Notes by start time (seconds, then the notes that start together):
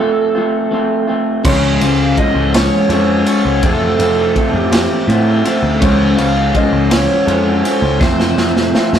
Already playing: F3 A3 A4
0.00 C4 F4
0.35 F3 A3 C4 F4
0.71 F3 A3 C4 F4
1.07 F3 A3 C4 F4
1.44 C#2 C#3 F3 G#3 C#4 F4 C#5, kick, crash
1.81 C#2 G#3 C#4 F4 F5, ride
2.17 F3 G#3 C#4 F4 D#5, kick, ride
2.35 C#2
2.54 G#3 C#4 F4 C#5, snare, ride
2.89 F2 F3 G#3 C#4 F4 C#5, ride
3.26 G#3 C#4 F4 C#5, ride
3.45 C#2
3.63 F2 C3 F3 A3 C4 F4 A4, kick, ride
3.99 F2 F3 A3 C4 F4, ride
4.34 F3 A3 C4 F4, kick, ride
4.53 F2
4.58 G4
4.71 F3 A3 C4 F4, snare, ride
5.08 A2 F3 A3 C4 F4, ride
5.44 F3 A3 C4 F4, ride
5.62 D2
5.80 C#2 C#3 F3 G#3 C#4 F4 C#5, kick, ride
6.17 C#2 G#3 C#4 F4 F5, ride
6.53 F3 G#3 C#4 F4 D#5, kick, ride
6.72 C#2
6.90 G#3 C#4 F4 C#5, snare, ride
7.26 F2 F3 G#3 C#4 F4, ride
7.63 G#3 C#4 F4, ride
7.82 C#2
8.00 F2 C3 F3 A3 C4 F4 C5, kick, snare
8.20 snare
8.35 F2 F3 A3 C4 F4, snare
8.57 snare
8.72 F3 A3 C4 F4, snare
8.93 F2, snare